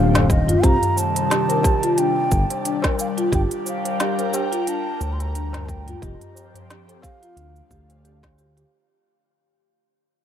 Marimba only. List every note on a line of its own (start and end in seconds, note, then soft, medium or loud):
0.00 0.14 D4 medium
0.15 0.47 A4 medium
0.48 0.63 F4 loud
0.63 0.81 G4 loud
1.30 1.48 G4 medium
1.49 1.63 A#4 medium
1.65 1.82 G4 loud
1.83 1.97 F4 loud
1.98 2.16 D4 medium
2.65 2.83 D4 medium
2.84 3.16 A#4 medium
3.18 3.32 F4 loud
3.32 3.50 G4 loud
4.00 4.18 G4 medium
4.18 4.32 A#4 medium
4.33 4.51 G4 loud
4.52 4.67 F4 loud
4.67 4.86 D4 medium
5.35 5.53 D4 medium
5.54 5.86 A#4 medium
5.88 6.02 F4 loud
6.02 6.20 G4 loud
6.70 6.88 G4 medium
6.88 7.02 A4 medium
7.03 7.21 G4 loud
7.22 7.37 F4 loud
7.37 7.55 D4 medium
7.71 7.82 G4 medium
8.04 8.22 G4 medium
8.23 8.37 G4 medium
8.38 8.55 G4 loud
8.57 8.71 G4 loud